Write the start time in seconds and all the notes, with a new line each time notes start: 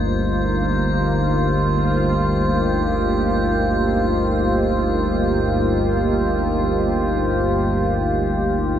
Already playing: G1 D2 G2 A#3 D#4 F4 G4 C5